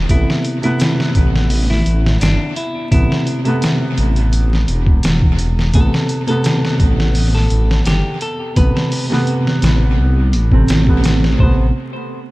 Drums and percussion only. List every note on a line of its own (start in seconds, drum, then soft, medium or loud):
0.09 kick loud
0.09 closed hi-hat medium
0.30 snare medium
0.45 closed hi-hat medium
0.63 closed hi-hat soft
0.80 snare loud
0.80 closed hi-hat medium
1.00 snare medium
1.15 kick medium
1.15 closed hi-hat medium
1.36 snare soft
1.50 open hi-hat medium
1.71 snare soft
1.86 closed hi-hat medium
2.06 snare medium
2.21 snare loud
2.21 closed hi-hat medium
2.56 closed hi-hat medium
2.92 kick loud
2.92 closed hi-hat medium
3.12 snare medium
3.27 closed hi-hat medium
3.45 closed hi-hat soft
3.62 snare loud
3.62 closed hi-hat medium
3.98 closed hi-hat medium
4.16 closed hi-hat soft
4.33 closed hi-hat medium
4.53 snare soft
4.68 closed hi-hat medium
4.86 kick loud
5.03 snare loud
5.03 closed hi-hat medium
5.22 kick medium
5.39 closed hi-hat medium
5.59 snare soft
5.74 kick loud
5.74 closed hi-hat medium
5.94 snare medium
6.09 closed hi-hat medium
6.28 closed hi-hat soft
6.44 snare loud
6.44 closed hi-hat medium
6.65 snare medium
6.80 kick medium
6.80 closed hi-hat medium
7.00 snare soft
7.15 open hi-hat medium
7.35 snare soft
7.50 closed hi-hat medium
7.71 snare medium
7.85 snare loud
7.85 closed hi-hat medium
8.21 closed hi-hat medium
8.56 kick loud
8.56 closed hi-hat medium
8.77 snare medium
8.92 open hi-hat medium
9.12 snare soft
9.27 closed hi-hat medium
9.47 snare soft
9.62 snare loud
9.62 closed hi-hat medium
10.33 closed hi-hat medium
10.52 kick loud
10.68 snare loud
10.68 closed hi-hat medium
10.87 kick medium
11.04 snare loud
11.04 closed hi-hat medium
11.24 snare soft
11.39 kick loud